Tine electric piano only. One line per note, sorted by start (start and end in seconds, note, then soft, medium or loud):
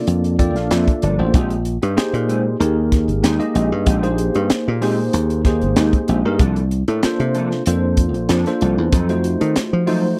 0.00 0.35 A#3 medium
0.00 0.35 D4 medium
0.00 0.35 F4 medium
0.00 0.35 A4 medium
0.00 0.35 D5 medium
0.39 1.13 A#3 medium
0.39 1.13 D4 medium
0.39 1.13 F4 medium
0.39 1.13 A4 medium
0.39 1.02 D5 medium
0.39 0.55 G5 medium
0.56 0.70 F5 medium
0.72 1.01 E5 medium
1.03 1.32 D5 medium
1.19 1.34 A#3 medium
1.19 1.34 D4 medium
1.19 1.34 F4 medium
1.19 1.34 A4 medium
1.19 1.34 C5 medium
1.96 2.55 A#3 medium
1.96 2.56 D#4 medium
1.96 2.56 G4 medium
1.96 2.56 G#4 medium
1.96 2.56 C5 medium
2.60 3.34 A#3 medium
2.60 3.34 D#4 medium
2.60 3.34 G4 medium
2.60 3.34 G#4 medium
2.60 3.34 A#4 medium
3.39 3.98 A#3 medium
3.39 3.98 D#4 medium
3.39 3.98 G4 medium
3.39 3.98 G#4 medium
3.39 3.98 D#5 medium
4.03 4.76 A#3 medium
4.03 4.76 D#4 medium
4.03 4.76 G4 medium
4.03 4.76 G#4 medium
4.03 4.76 C5 medium
4.81 5.40 A#3 medium
4.81 5.41 D#4 medium
4.81 5.41 G4 medium
4.81 5.40 G#4 medium
4.81 5.40 C5 medium
5.46 6.19 A#3 medium
5.46 6.19 D#4 medium
5.46 6.19 G4 medium
5.46 6.19 G#4 medium
5.46 6.19 C5 medium
6.25 6.40 A#3 medium
6.25 6.40 D#4 medium
6.25 6.40 G4 medium
6.25 6.40 G#4 medium
6.25 6.40 A#4 medium
7.04 7.62 A#3 medium
7.04 7.62 D4 medium
7.04 7.62 F4 medium
7.04 7.62 A4 medium
7.04 7.62 C5 medium
7.68 8.41 A#3 medium
7.68 8.41 D4 medium
7.68 8.41 F4 medium
7.68 8.41 A4 medium
7.68 8.41 C5 medium
8.47 8.93 A#3 medium
8.47 8.93 D4 medium
8.47 8.94 F4 medium
8.47 8.93 A4 medium
8.47 8.93 C5 medium
9.09 9.82 A3 medium
9.09 9.82 D#4 medium
9.09 9.82 F4 medium
9.09 9.82 F#4 medium
9.09 9.82 C5 medium
9.87 10.20 A3 medium
9.87 10.20 D#4 medium
9.87 10.20 F4 medium
9.87 10.20 F#4 medium
9.87 10.20 C5 medium